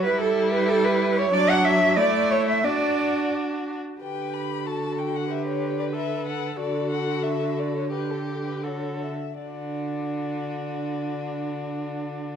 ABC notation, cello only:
X:1
M:2/4
L:1/16
Q:1/4=90
K:D
V:1 name="Cello"
B A2 B A B2 c | d f e2 d2 c e | d4 z4 | D,8- |
D,8 | D,8- | D,6 z2 | D,8- |
D,8 |]